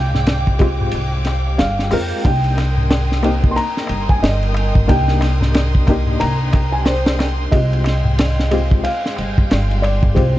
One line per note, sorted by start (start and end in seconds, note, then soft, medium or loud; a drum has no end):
0.00 0.91 C2 medium
0.00 0.57 G#3 medium
0.00 2.22 G#3 medium
0.00 0.57 C4 medium
0.00 0.58 F4 medium
0.00 0.58 G4 medium
0.00 2.21 F5 medium
0.00 1.65 G5 loud
0.00 7.49 G5 medium
0.00 10.39 G5 medium
0.00 2.23 D6 medium
0.14 snare soft
0.14 darbuka tek soft
0.14 darbuka dum medium
0.26 snare loud
0.26 ride medium
0.26 darbuka tek medium
0.47 kick medium
0.59 1.89 G#3 medium
0.59 1.89 C4 medium
0.59 1.90 F4 medium
0.59 1.90 G4 loud
0.59 kick medium
0.59 ride medium
0.59 darbuka tek medium
0.81 darbuka tek soft
0.81 darbuka dum medium
0.91 1.59 C2 medium
0.91 ride medium
0.91 darbuka tek medium
1.14 darbuka tek soft
1.25 snare soft
1.25 ride medium
1.25 darbuka tek medium
1.47 darbuka tek soft
1.58 1.90 G1 medium
1.58 2.27 F5 medium
1.58 snare loud
1.58 ride medium
1.58 darbuka tek soft
1.79 snare soft
1.91 2.10 F2 medium
1.91 2.22 G#3 medium
1.91 2.22 C4 medium
1.91 2.22 F4 medium
1.91 2.22 A#4 loud
1.91 open hi-hat medium
1.91 darbuka tek medium
2.12 darbuka tek soft
2.23 3.54 C2 medium
2.23 3.20 A#3 medium
2.23 3.21 D4 medium
2.23 3.21 D#4 medium
2.23 3.21 G4 medium
2.23 7.49 A#4 medium
2.23 3.55 G5 loud
2.23 10.39 C6 medium
2.23 7.49 D#6 medium
2.23 kick loud
2.23 ride medium
2.23 darbuka tek soft
2.44 ride soft
2.44 darbuka tek soft
2.58 snare soft
2.58 ride medium
2.58 darbuka tek medium
2.77 darbuka tek soft
2.77 darbuka dum medium
2.91 snare loud
2.91 ride medium
2.91 darbuka tek soft
3.12 snare soft
3.22 4.85 A#3 medium
3.22 4.85 C4 medium
3.22 4.86 D#4 medium
3.22 4.86 G4 medium
3.22 ride medium
3.22 darbuka tek medium
3.43 kick medium
3.43 darbuka tek soft
3.51 3.57 C6 medium
3.56 4.06 A#5 loud
3.56 ride medium
3.56 darbuka tek medium
3.77 snare soft
3.87 4.20 G1 medium
3.87 ride medium
3.87 darbuka tek medium
4.08 4.23 G#5 medium
4.08 kick medium
4.08 darbuka tek soft
4.20 4.86 G1 medium
4.20 4.91 D#5 medium
4.20 snare loud
4.20 ride medium
4.20 darbuka tek soft
4.43 ride soft
4.54 ride medium
4.54 darbuka tek medium
4.73 kick loud
4.73 darbuka tek soft
4.73 darbuka dum medium
4.87 6.18 C2 medium
4.87 5.84 A#3 medium
4.87 5.84 D4 medium
4.87 5.85 D#4 medium
4.87 5.85 G4 loud
4.87 6.25 G5 loud
4.87 kick medium
4.87 ride medium
4.87 darbuka tek soft
5.08 snare soft
5.08 darbuka tek soft
5.21 snare soft
5.21 ride medium
5.21 darbuka tek medium
5.40 snare soft
5.40 darbuka tek soft
5.40 darbuka dum medium
5.54 snare loud
5.54 ride medium
5.54 darbuka tek soft
5.75 kick medium
5.87 7.49 A#3 medium
5.87 7.50 D4 medium
5.87 7.50 D#4 medium
5.87 7.51 G4 loud
5.87 kick medium
5.87 ride medium
5.87 darbuka tek medium
6.06 darbuka tek soft
6.06 darbuka dum medium
6.20 7.51 C2 medium
6.20 6.75 A#5 loud
6.20 ride medium
6.20 darbuka tek soft
6.53 kick loud
6.53 ride medium
6.53 darbuka tek medium
6.72 6.77 G#5 medium
6.72 darbuka tek soft
6.85 7.54 C5 medium
6.85 snare medium
6.85 ride medium
6.85 darbuka tek soft
7.06 snare loud
7.19 snare medium
7.19 ride medium
7.19 darbuka tek medium
7.38 darbuka tek soft
7.51 8.82 C2 medium
7.51 8.48 G#3 medium
7.51 10.39 G#3 medium
7.51 8.48 C4 medium
7.51 8.49 F4 medium
7.51 8.50 G4 medium
7.51 8.88 D#5 medium
7.51 10.39 F5 medium
7.51 10.39 G5 medium
7.51 kick loud
7.51 ride medium
7.51 darbuka tek soft
7.72 ride soft
7.72 darbuka tek soft
7.84 snare soft
7.84 ride medium
7.84 darbuka tek medium
8.04 darbuka tek soft
8.04 darbuka dum medium
8.18 snare loud
8.18 ride medium
8.18 darbuka tek soft
8.39 snare medium
8.51 10.13 G#3 medium
8.51 10.13 C4 medium
8.51 10.14 F4 medium
8.51 10.15 G4 medium
8.51 ride medium
8.51 darbuka tek medium
8.71 kick medium
8.71 darbuka tek soft
8.84 9.86 F5 medium
8.84 ride medium
8.84 darbuka tek soft
9.06 snare soft
9.16 9.48 G1 medium
9.16 ride medium
9.16 darbuka tek medium
9.38 kick loud
9.38 darbuka tek soft
9.50 10.15 G1 loud
9.50 snare loud
9.50 ride medium
9.50 darbuka tek soft
9.71 ride soft
9.82 10.17 D5 medium
9.82 ride medium
9.82 darbuka tek medium
10.03 kick medium
10.03 darbuka tek soft
10.03 darbuka dum medium
10.14 10.39 C2 medium
10.14 10.39 G#3 medium
10.14 10.39 C4 medium
10.14 10.39 F4 medium
10.14 10.39 G4 medium
10.14 10.39 C5 medium
10.14 kick medium
10.14 ride medium
10.14 darbuka tek soft
10.36 darbuka tek soft